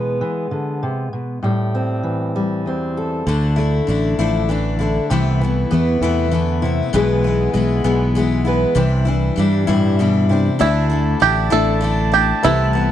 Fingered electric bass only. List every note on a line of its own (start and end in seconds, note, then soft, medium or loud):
3.27 3.80 D2 medium
3.88 4.15 A1 medium
4.19 4.98 A1 medium
5.11 5.64 C2 medium
5.72 5.99 E2 medium
6.01 6.81 E2 medium
6.94 7.47 B1 medium
7.55 7.82 B1 medium
7.85 8.65 B1 medium
8.76 9.29 C2 medium
9.38 9.65 G2 medium
9.69 10.48 G2 medium
10.61 11.14 D2 medium
11.22 11.48 A1 medium
11.53 12.32 A1 medium
12.45 12.92 C2 loud